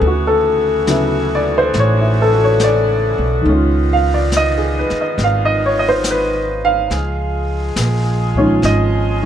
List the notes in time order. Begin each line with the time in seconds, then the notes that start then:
Already playing: C#3 B3
0.00 D2 E3 F#4, brush sweep
0.07 F#4
0.27 A4
0.87 C#3 F#3 B3 E4, snare, hi-hat pedal
1.35 D5
1.58 C5
1.74 A1, brush sweep, snare
1.79 C#5
2.01 E4
2.22 A4
2.31 A3 F#4
2.44 C#5
2.60 snare, hi-hat pedal
2.64 D5
3.18 B1
3.41 D#3 G#3
3.45 C#2 D#3 C#4 F4, brush sweep
3.52 F4
3.93 F5
4.14 D5
4.32 snare, hi-hat pedal
4.37 D#5
4.58 G#4
4.79 B4
4.90 muted upright bass stroke, snare
5.01 D#5
5.18 G#1, brush sweep, snare
5.24 F5
5.45 D#5
5.66 C#5
5.79 D#5
5.89 C5
6.04 snare, hi-hat pedal
6.11 B4
6.65 F5
6.90 C#2 F3 G#3 G#4, brush sweep, snare
7.76 A#1, snare, hi-hat pedal
8.35 D#3 G#3 C#4 F4 C#5, kick
8.62 G#1 D#5, brush sweep, snare
9.22 D#3